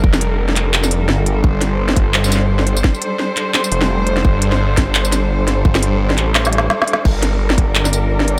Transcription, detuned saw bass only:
X:1
M:4/4
L:1/8
Q:"Swing 16ths" 1/4=171
K:Gm
V:1 name="Detuned saw bass" clef=bass
F,,,6 G,,,2 | G,,,6 G,,,2 | z4 z F,,,3 | G,,,6 G,,,2 |
G,,,3 A,,,3 z2 | G,,,6 G,,,2 |]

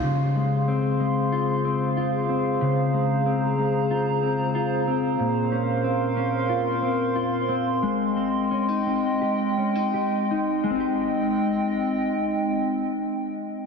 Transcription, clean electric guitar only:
X:1
M:4/4
L:1/16
Q:1/4=92
K:Ab
V:1 name="Clean electric guitar"
D,2 A,2 C2 A,2 F2 C2 F2 C2 | D,2 A,2 C2 A,2 F2 C2 F2 C2 | B,,2 D2 C2 D2 F2 C2 F2 C2 | A,2 C2 D E C2 G2 D E G2 E2 |
[A,CEG]16 |]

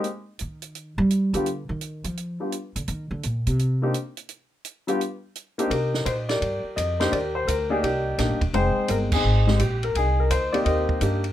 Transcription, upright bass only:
X:1
M:4/4
L:1/8
Q:"Swing" 1/4=170
K:Cm
V:1 name="Upright bass" clef=bass
z2 E,3 G,2 D,- | D, E,2 F,2 z2 D, | E, D, B,, C,3 z2 | z8 |
C,2 B,,2 G,, z F,,2 | E,,2 D,,2 C,,2 (3B,,, G,,, E,,, | F,,, z G,,,2 A,,,2 B,,,2 | C,,2 D,,2 E,,2 G,,2 |]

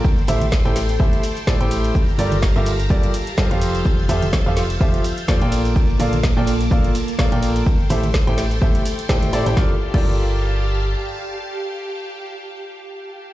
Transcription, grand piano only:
X:1
M:4/4
L:1/16
Q:"Swing 16ths" 1/4=126
K:Gdor
V:1 name="Grand piano"
z2 [A,EGAce] z2 [A,EGAcg] z2 [A,EGAce]2 z2 [A,EGAcd] [A,EGAcg]3 | z2 [G,FGABd] z2 [G,FGABe] z2 [G,FGABd]2 z2 [F,FGABc] [F,FGAcf]3- | [F,FGAcf]2 [F,FGAce] z2 [F,FGAcf] z2 [F,FGAce]2 z2 [B,FGAcd] [B,FABdg]3- | [B,FABdg]2 [B,FABdf] z2 [B,FABdg] z2 [B,FABdf]2 z2 [B,FABdf] [B,FABdg]3 |
z2 [A,EGAce] z2 [A,EGAcg] z2 [A,EGAce]2 z2 [A,EGAcg]2 [EGAcd] [EGAcg] | [FGABd] z2 [FGABd]12- [FGABd]- | [FGABd]16 |]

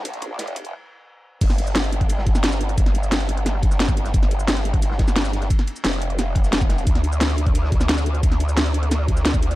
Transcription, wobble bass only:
X:1
M:4/4
L:1/8
Q:1/4=176
K:Fmix
V:1 name="Wobble bass" clef=bass
B,,,2 F,,,2 z4 | G,,,8 | G,,,8 | G,,,8 |
z2 F,,,6 | D,,8 | D,,8 |]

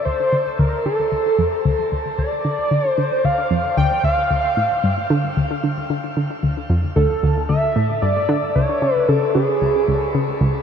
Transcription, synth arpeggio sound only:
X:1
M:4/4
L:1/8
Q:1/4=113
K:Dm
V:1 name="Synth arpeggio sound" clef=bass
D,, D, D,, D, D,, F,, D,, D,, | D,, D, D, D, D,, F,, D,, D,, | D,, A,, G,, D, D,, D, D, D, | D,, F,, D,, D,, D,, A,, G,, D, |
^C,, ^C, C, C, C,, C,, C, C,, |]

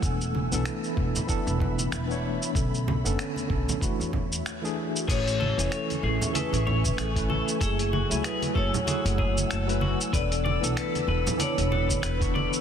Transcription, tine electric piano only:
X:1
M:4/4
L:1/16
Q:"Swing 16ths" 1/4=95
K:A
V:1 name="Tine electric piano"
[E,B,DA]3 [E,B,DA]3 [E,B,DA]2 [E,B,DA]2 [E,B,DB]3 [E,B,Dc]3 | [D,B,CA]3 [D,B,CA]3 [D,B,CA]2 [E,A,DF]2 z3 [E,A,DG]3 | [E,A,CG]3 [E,A,Cg]3 [E,A,CG]2 [E,A,CG]2 [E,A,C]3 [E,A,CB]3 | [F,A,Eg]3 [F,A,Eg]3 [F,A,EG]2 [F,A,EG]2 [F,A,E]3 [F,A,EB]3 |
[E,B,DA]3 [E,B,DA]3 [E,B,DA]2 [E,B,DA]2 [E,B,DB]3 [E,B,Dc']3 |]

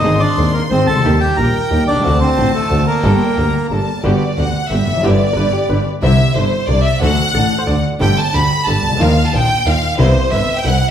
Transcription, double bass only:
X:1
M:3/4
L:1/8
Q:1/4=181
K:Gm
V:1 name="Double bass" clef=bass
_A,,, z E,, z A,,, ^C,, | E,, z B,,, z E,, C,, | D,, z A,,, z D,, z | G,,, z D,, z G,,, z |
[K:G] G,,, z D,, z G,,, =F,,, | G,,, z G,,, z G,,, z | C,, z G,,, z C,, z | D,, z A,,, z D,, z |
G,,, z D,, z G,,, ^C,, | _E,, z _B,,, z E,, z | C,, z G,,, z C,, z |]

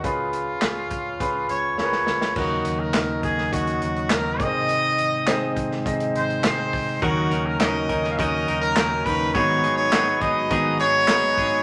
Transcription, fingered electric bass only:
X:1
M:4/4
L:1/8
Q:1/4=103
K:Ebm
V:1 name="Fingered electric bass" clef=bass
z2 D,, D,, D,, D,, D,, D,, | E,, E,, E,, E,, E,, E,, E,, A,,,- | A,,, A,,, A,,, A,,, A,,, A,,, A,,, A,,, | E,, E,, E,, E,, E,, E,, E,, E,, |
A,,, A,,, A,,, A,,, A,,, A,,, A,,, A,,, |]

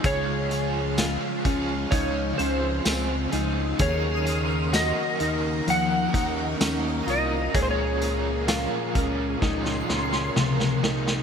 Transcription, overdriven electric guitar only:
X:1
M:4/4
L:1/8
Q:1/4=64
K:Db
V:1 name="Overdriven electric guitar"
[D,A,FA] [FA] [A,FA] [FA] [D,A,FA] [CFA] [A,CFA] [CFA] | [E,G,DEB] [DEB] [G,DEB] [DEB] [E,G,DEB] [DEB] [G,DEB] [DEB] | [D,F,A,FB] [A,FB] [F,A,FB] [A,FB] [D,F,A,FB] [A,FB] [F,A,FB] [A,FB] |]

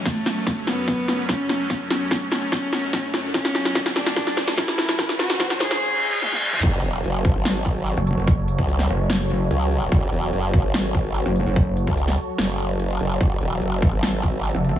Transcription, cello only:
X:1
M:4/4
L:1/8
Q:1/4=146
K:F#m
V:1 name="Cello"
A,3 B,3 C2- | C C2 C4- C | C3 D3 E2- | E F2 G4- G |
z8 | z8 | z8 | z8 |
z8 |]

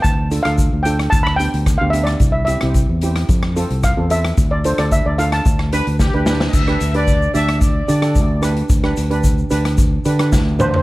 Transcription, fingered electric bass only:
X:1
M:4/4
L:1/16
Q:1/4=111
K:Gmix
V:1 name="Fingered electric bass" clef=bass
D,,3 D,,2 D,,3 D,,3 D,,2 D,,3 | C,,3 C,,2 E,,3 F,,3 C,,2 E,,3 | D,,3 D,,2 D,,3 D,,3 D,,2 D,,3 | D,,2 D,,4 D,,4 D,2 D,,4 |
D,,2 D,,4 D,,4 D,2 D,,4 |]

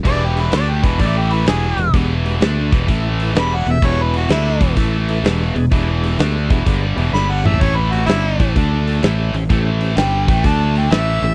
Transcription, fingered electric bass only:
X:1
M:4/4
L:1/8
Q:"Swing" 1/4=127
K:A
V:1 name="Fingered electric bass" clef=bass
E,,,2 D,, E,,, A,,,2 E,,, E,,, | E,,,2 D,, E,,, A,,,2 E,,, E,,, | E,,,2 D,, E,,, A,,,2 E,,, E,,, | E,,,2 D,, E,,, =G,,, E,,, G,,, A,,, |
A,,,2 =G,,, A,,, D,,2 A,,, A,,, | A,,,2 =G,,, A,,, D,,2 A,,, A,,, |]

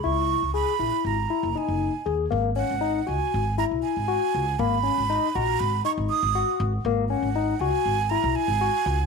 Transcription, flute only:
X:1
M:9/8
L:1/8
Q:3/8=79
K:G#m
V:1 name="Flute"
c'2 b2 a2 g2 z | z f2 g2 a g3 | b3 a b c' d'2 z | z f2 g2 a g3 |]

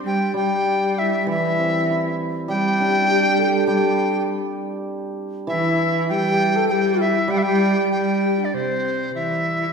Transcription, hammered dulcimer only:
X:1
M:4/4
L:1/8
Q:1/4=99
K:none
V:1 name="Hammered dulcimer" clef=bass
z G,3 E, C E2 | G, D G A G,4- | G,2 E,6 | G,6 z2 |]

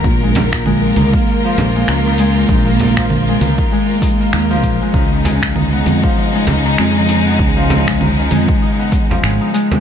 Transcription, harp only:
X:1
M:4/4
L:1/16
Q:"Swing 16ths" 1/4=98
K:A#phr
V:1 name="Harp" clef=bass
z G, D, D, G, z D A, z E, z G, D, D, G, z | D A, z E, z G, D, D, G, z D A, z E, z G, | D, D, G, z D B, z E, z G, D, D, G, z D B, | z E, z G, D, D, G, z D B, z E, G, D G, z |]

